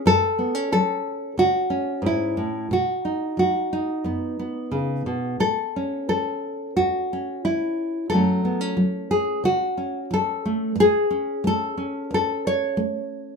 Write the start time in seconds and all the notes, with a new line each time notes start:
0.06 F#2 A4
0.39 B3
0.55 C#4
0.72 F#3 A4
1.38 C#3 F#4
1.70 C#4
2.02 G#2
2.06 E4
2.37 A2
2.71 B2 F#4
3.05 D#4
3.37 F#3 F#4
3.73 D#4
4.04 F#2 B3
4.39 B3
4.71 C#3
5.06 B2
5.40 A2 A4
5.76 C#4
6.09 E3 A4
6.77 E2 F#4
7.13 C#4
7.45 E3 E4
8.10 F#2 F#3 A4
8.14 A3 C#4
8.45 B3
8.61 C#4
8.77 F#3
9.11 G#4
9.44 C#3 F#4
9.78 C#4
10.11 F#3 A4
10.45 A3
10.76 A2
10.80 G#4
11.11 C#4
11.44 A3 A4
11.77 C#4
12.11 E2 A4
12.47 C#5
12.77 A3